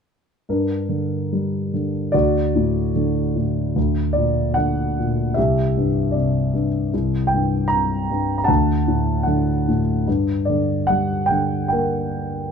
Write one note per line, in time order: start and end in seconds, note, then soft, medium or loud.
0.49 2.09 G2 soft
0.49 2.11 D4 soft
0.49 2.19 A#4 medium
0.89 1.72 D3 soft
1.33 2.11 G3 soft
1.74 2.13 D3 soft
2.12 3.73 D2 soft
2.12 3.73 F#4 medium
2.12 2.90 D5 medium
2.56 3.34 A2 soft
2.96 3.74 D3 soft
3.36 3.75 A2 soft
3.76 5.32 D2 soft
4.13 4.97 A#2 soft
4.13 4.56 D5 medium
4.54 5.34 D3 soft
4.54 5.31 F#5 medium
4.99 5.36 A#2 soft
5.34 6.90 C2 soft
5.34 6.89 G4 soft
5.34 6.16 E5 medium
5.77 6.52 G2 soft
6.11 6.91 C3 soft
6.11 6.67 D5 soft
6.54 6.92 G2 soft
6.94 8.45 C2 soft
7.27 7.66 G5 medium
7.34 8.09 G2 soft
7.68 8.36 A#5 medium
7.73 8.47 C3 soft
8.11 8.48 G2 soft
8.38 8.46 A#5 medium
8.44 9.22 F#5 medium
8.44 9.20 A5 medium
8.48 10.03 D2 medium
8.88 9.67 A2 soft
9.23 10.05 D3 soft
9.23 9.81 F#5 medium
9.68 10.07 A2 soft
10.08 12.52 G2 medium
10.45 10.84 D5 medium
10.49 11.29 D3 soft
10.87 12.52 G3 soft
10.87 11.30 F#5 medium
11.26 11.67 G5 medium
11.30 12.52 D3 soft
11.68 12.52 A#3 soft
11.68 12.52 G5 medium
11.73 12.52 A#4 soft